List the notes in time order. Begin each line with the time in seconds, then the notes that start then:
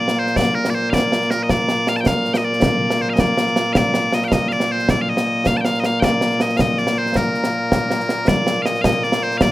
Already playing: A#2 A#3
0.00 D5
0.08 snare
0.19 C5
0.27 snare
0.36 D5, concert bass drum, snare
0.55 A#4
0.65 snare
0.70 D5
0.74 C5
0.90 D5 F5, concert bass drum, snare
1.12 snare
1.21 snare
1.31 A#4, snare
1.43 D#5
1.49 D5, concert bass drum, snare
1.69 snare
1.87 F5, snare
1.96 A5, snare
2.00 G5
2.06 F5, concert bass drum, snare
2.25 snare
2.34 D#5 G5, snare
2.44 D5
2.53 snare
2.62 concert bass drum, snare
2.90 snare
3.01 C5
3.09 D#5 F5
3.18 D5, concert bass drum, snare
3.37 snare
3.47 snare
3.56 snare
3.73 F5, concert bass drum, snare
3.77 D5
3.94 snare
4.12 D#5, snare
4.22 G5, snare
4.28 F5, concert bass drum, snare
4.32 D#5
4.48 F5, snare
4.52 D5
4.60 snare
4.72 C5
4.79 snare
4.89 D5, concert bass drum, snare
5.01 F5
5.09 D#5
5.17 snare
5.46 F5, concert bass drum, snare
5.57 G5 A5
5.65 F5, snare
5.74 snare
5.80 D#5
5.84 F5, snare
6.00 D5 G5, concert bass drum, snare
6.21 snare
6.31 snare
6.40 D#5, snare
6.50 snare
6.57 D#5 F5, concert bass drum, snare
6.78 D5, snare
6.87 snare
6.98 C5
7.06 snare
7.15 A#4, concert bass drum, snare
7.34 snare
7.44 snare
7.72 concert bass drum, snare
7.91 snare
8.00 snare
8.09 snare
8.28 D5, concert bass drum, snare
8.47 snare
8.62 D#5 F5, snare
8.75 snare
8.81 D#5 F5, concert bass drum, snare
9.03 D5, snare
9.12 snare
9.23 C5
9.31 snare
9.37 F5, concert bass drum, snare
9.42 D5